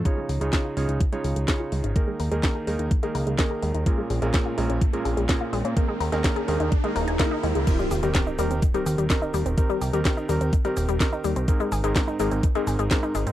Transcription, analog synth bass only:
\new Staff \with { instrumentName = "Analog synth bass" } { \clef bass \time 4/4 \key ees \mixolydian \tempo 4 = 126 r8 des,16 des,16 r8 des,16 des,16 r8 des,16 des,16 r8 des,16 aes,,16 | r8 ees,16 ees,16 r8 ees,16 ees,16 r8 des,16 des,16 r8 ees,16 ees,16 | r8 bes,,16 bes,,16 r8 bes,,16 bes,,16 r8 bes,,16 bes,,16 r8 bes,,16 bes,16 | r8 ees,16 ees,16 r8 ees,16 ees,16 r8 ees,,16 ees,,16 r8 ees,16 des,16 |
r8 ees,16 ees,16 r8 ees,16 ees,16 r8 ees,16 ees,16 r8 ees,16 ees,,16 | r8 c,16 ees,16 r8 ees,16 ees,16 r8 ees,,16 ees,,16 r8 ees,16 c,16 | r8 aes,,16 aes,,16 r8 aes,,16 aes,,16 r8 aes,,16 aes,,16 r8 aes,,16 aes,16 | }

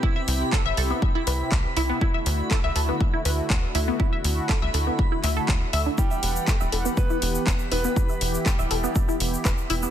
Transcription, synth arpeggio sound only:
\new Staff \with { instrumentName = "Synth arpeggio sound" } { \time 4/4 \key e \minor \tempo 4 = 121 e'16 e''16 r8 a'16 e''16 a'16 b16 r16 e'16 b'16 r8. e'16 b16 | e'16 e''16 r8 a'16 e''16 a'16 b16 r16 e'16 b'16 r8. e'16 b16 | e'16 e''16 r8 a'16 e''16 a'16 b16 r16 e'16 e''16 a'16 r8 e''16 d'16 | e'16 e''16 r8 a'16 e''16 a'16 b16 r16 e'16 r8 b'16 r16 e'16 b16 |
e'16 e''16 r8 a'16 e''16 a'16 b16 r16 e'16 r8 b'16 r16 e'16 b16 | }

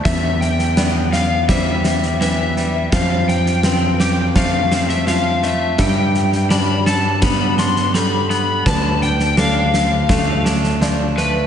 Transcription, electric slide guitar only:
\new Staff \with { instrumentName = "Electric slide guitar" } { \time 4/4 \key e \phrygian \tempo 4 = 84 e''8 g''4 f''8 e''4 e''4 | f''8 g''4. f''8. e''16 f''8 e''8 | g''4 b''8 a''8 b''8 c'''8 b''8 b''8 | a''8 g''8 f''4. r4 b'8 | }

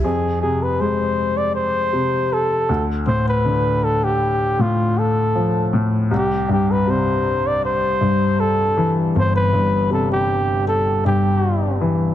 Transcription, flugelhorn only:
\new Staff \with { instrumentName = "Flugelhorn" } { \time 4/4 \key c \major \tempo 4 = 79 aes'8 aes'16 b'16 c''8. d''16 c''4 a'8. r16 | c''16 b'8. a'16 g'8. f'8 a'4 r8 | g'8 g'16 b'16 c''8. d''16 c''4 a'8. r16 | c''16 b'8. a'16 g'8. a'8 g'4 r8 | }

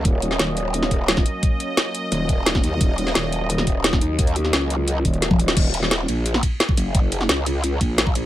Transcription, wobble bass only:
\new Staff \with { instrumentName = "Wobble bass" } { \clef bass \time 4/4 \key ees \minor \tempo 4 = 174 ees,,4 ees,,2~ ees,,8 r8 | r2 ees,,4. ees,8 | ees,,4 ees,,2~ ees,,8 ees,8~ | ees,4 des,4. ees,,4. |
ees,,4. bes,,4 r4 ges,,8~ | ges,,4 des,4. bes,,4. | }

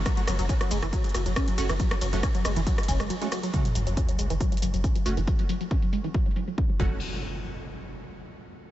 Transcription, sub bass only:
\new Staff \with { instrumentName = "Sub bass" } { \clef bass \time 4/4 \key fis \minor \tempo 4 = 138 r8 fis,,16 fis,,16 r8 fis,,16 fis,,16 r8 fis,,16 fis,,16 r8 fis,,16 fis,,16 | r8 fis,,16 fis,,16 r8 fis,,16 fis,,16 r8 fis,,16 fis,,16 r4 | r8 fis,,16 fis,,16 r8 fis,,16 fis,,16 r8 fis,,16 fis,,16 r8 fis,,16 fis,,16 | r2. r8 fis,,8 |
r1 | }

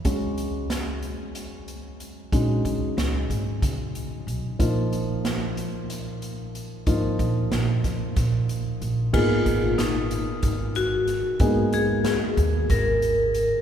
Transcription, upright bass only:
\new Staff \with { instrumentName = "Upright bass" } { \clef bass \time 7/8 \key gis \dorian \tempo 4 = 92 cis,2 r4. | ais,,8 cis,8 cis,8 gis,,8 cis4 b,,8 | ais,,2 r4. | gis,,8 ais,,8 ais,,8 eis,8 ais,4 ais,,8 |
gis,,8 gis,,4. gis,,4. | gis,4. dis,8 gis,,4. | }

